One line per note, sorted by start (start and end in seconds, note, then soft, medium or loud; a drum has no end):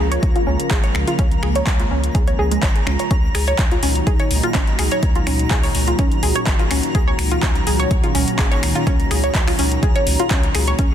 0.00 0.18 C#2 medium
0.00 3.07 C#3 medium
0.00 3.07 F3 medium
0.00 3.07 G#3 medium
0.00 3.07 A#3 medium
0.00 3.07 F4 medium
0.00 10.80 A#5 medium
0.12 0.16 C#5 loud
0.12 closed hi-hat soft
0.23 0.33 C#2 loud
0.23 kick loud
0.23 closed hi-hat medium
0.36 0.40 F4 medium
0.36 closed hi-hat soft
0.47 0.57 C#2 medium
0.47 0.52 C#4 medium
0.60 closed hi-hat soft
0.71 0.90 G#1 medium
0.71 0.76 G#4 medium
0.71 kick loud
0.71 clap loud
0.71 closed hi-hat medium
0.84 0.88 C#5 loud
0.84 closed hi-hat soft
0.95 1.05 C#2 medium
0.95 finger snap medium
1.07 1.12 F4 medium
1.07 closed hi-hat soft
1.19 1.37 C#2 medium
1.19 1.24 C#4 medium
1.19 kick loud
1.19 closed hi-hat medium
1.31 closed hi-hat soft
1.43 1.62 C#2 loud
1.43 1.48 G#4 medium
1.43 finger snap medium
1.55 1.60 C#5 loud
1.55 closed hi-hat soft
1.67 1.85 C#2 medium
1.67 kick loud
1.67 clap loud
1.67 closed hi-hat medium
1.80 1.84 F4 medium
1.80 closed hi-hat soft
1.91 2.10 C#2 medium
1.91 1.96 C#4 medium
2.04 closed hi-hat soft
2.15 2.33 C#2 medium
2.15 2.20 G#4 medium
2.15 kick loud
2.15 closed hi-hat medium
2.27 2.32 C#5 loud
2.27 closed hi-hat soft
2.39 2.58 C#2 medium
2.39 2.42 G#4 loud
2.51 2.54 G#3 medium
2.51 closed hi-hat soft
2.63 2.82 G#1 medium
2.63 2.70 C#5 medium
2.63 kick loud
2.63 clap loud
2.63 closed hi-hat medium
2.76 closed hi-hat soft
2.87 2.97 C#2 medium
2.87 2.92 C#4 medium
2.87 finger snap medium
2.99 3.04 C#5 medium
2.99 closed hi-hat soft
3.11 3.29 C#2 medium
3.11 10.75 A#2 medium
3.11 10.75 D#3 medium
3.11 10.75 F#3 medium
3.11 3.16 C#4 medium
3.11 6.91 D#4 medium
3.11 10.75 F#4 medium
3.11 kick loud
3.11 closed hi-hat medium
3.35 3.54 C#2 loud
3.35 3.40 G#4 medium
3.35 finger snap medium
3.35 open hi-hat loud
3.47 3.52 C#5 medium
3.47 closed hi-hat soft
3.59 3.77 C#2 medium
3.59 kick loud
3.59 clap loud
3.59 closed hi-hat medium
3.71 3.76 F4 medium
3.71 closed hi-hat soft
3.83 4.01 C#2 medium
3.83 3.88 C#4 medium
3.83 open hi-hat loud
3.95 closed hi-hat soft
4.07 4.17 C#2 loud
4.07 4.12 G#4 medium
4.07 kick loud
4.07 closed hi-hat medium
4.19 4.24 C#5 medium
4.19 closed hi-hat soft
4.31 4.41 C#2 medium
4.31 open hi-hat loud
4.43 4.48 F4 medium
4.43 closed hi-hat soft
4.55 4.73 G#1 medium
4.55 4.60 C#4 medium
4.55 kick loud
4.55 clap loud
4.55 closed hi-hat medium
4.67 closed hi-hat soft
4.79 4.89 C#2 medium
4.79 4.84 G#4 medium
4.79 finger snap medium
4.79 open hi-hat loud
4.91 4.96 C#5 loud
4.91 closed hi-hat soft
5.03 5.21 C#2 loud
5.03 kick loud
5.03 closed hi-hat medium
5.15 5.20 F4 medium
5.15 closed hi-hat soft
5.27 5.46 C#2 loud
5.27 5.32 C#4 medium
5.27 finger snap medium
5.27 open hi-hat loud
5.39 closed hi-hat soft
5.51 5.70 C#2 medium
5.51 5.56 G#4 medium
5.51 kick loud
5.51 clap loud
5.51 closed hi-hat medium
5.63 5.68 C#5 loud
5.63 open hi-hat medium
5.75 5.94 C#2 medium
5.75 open hi-hat loud
5.87 5.92 F4 medium
5.87 closed hi-hat soft
5.99 6.09 C#2 loud
5.99 6.04 C#4 medium
5.99 kick loud
5.99 closed hi-hat medium
6.12 closed hi-hat soft
6.23 6.33 C#2 medium
6.23 6.28 G#4 medium
6.23 open hi-hat loud
6.35 6.40 C#5 loud
6.35 closed hi-hat medium
6.47 6.66 G#1 medium
6.47 kick loud
6.47 clap loud
6.47 closed hi-hat medium
6.59 6.64 F4 medium
6.59 closed hi-hat soft
6.71 6.81 C#2 medium
6.71 6.76 C#4 medium
6.71 finger snap medium
6.71 open hi-hat loud
6.83 closed hi-hat soft
6.95 7.14 C#2 loud
6.95 10.75 C#4 medium
6.95 7.00 G#4 medium
6.95 kick loud
6.95 closed hi-hat medium
7.08 7.12 C#5 loud
7.19 7.38 C#2 loud
7.19 finger snap medium
7.19 open hi-hat loud
7.31 7.36 F4 medium
7.31 closed hi-hat soft
7.43 7.61 C#2 medium
7.43 7.48 C#4 medium
7.43 kick loud
7.43 clap loud
7.43 closed hi-hat medium
7.55 closed hi-hat soft
7.67 7.86 C#2 medium
7.67 7.72 G#4 medium
7.67 open hi-hat loud
7.80 7.84 C#5 loud
7.80 closed hi-hat medium
7.91 8.01 C#2 loud
7.91 kick loud
7.91 closed hi-hat medium
8.04 8.08 F4 medium
8.04 closed hi-hat soft
8.15 8.25 C#2 medium
8.15 8.20 C#4 medium
8.15 open hi-hat loud
8.28 closed hi-hat medium
8.39 8.57 G#1 medium
8.39 8.44 G#4 medium
8.39 kick loud
8.39 clap loud
8.39 closed hi-hat medium
8.52 8.56 C#5 medium
8.52 closed hi-hat soft
8.63 8.73 C#2 medium
8.63 finger snap medium
8.63 open hi-hat loud
8.75 8.80 F4 medium
8.75 closed hi-hat soft
8.87 9.05 C#2 medium
8.87 8.92 C#4 medium
8.87 kick loud
8.87 closed hi-hat medium
9.00 closed hi-hat soft
9.11 9.30 C#2 loud
9.11 9.16 G#4 medium
9.11 finger snap medium
9.11 open hi-hat loud
9.24 9.28 C#5 loud
9.24 closed hi-hat medium
9.35 9.53 C#2 medium
9.35 kick loud
9.35 clap loud
9.35 closed hi-hat medium
9.48 9.52 F4 medium
9.48 finger snap medium
9.48 open hi-hat medium
9.59 9.77 C#2 medium
9.59 9.64 C#4 medium
9.59 open hi-hat loud
9.72 closed hi-hat soft
9.83 9.92 C#2 loud
9.83 9.88 G#4 medium
9.83 kick loud
9.83 closed hi-hat medium
9.96 10.00 C#5 loud
9.96 closed hi-hat soft
10.07 10.17 C#2 medium
10.07 open hi-hat loud
10.19 10.24 F4 medium
10.19 closed hi-hat medium
10.31 10.49 C#2 medium
10.31 10.36 C#4 medium
10.31 kick loud
10.31 clap loud
10.31 closed hi-hat medium
10.43 closed hi-hat soft
10.55 10.73 C#2 loud
10.55 10.60 G#4 medium
10.55 finger snap medium
10.55 open hi-hat loud
10.67 10.72 C#5 loud
10.67 closed hi-hat medium
10.79 10.95 C#2 medium
10.79 10.95 C#3 medium
10.79 10.95 F3 medium
10.79 10.95 G#3 medium
10.79 10.95 B3 medium
10.79 10.84 C#4 medium
10.79 10.95 F4 medium
10.79 10.95 F5 medium
10.79 kick loud
10.79 closed hi-hat medium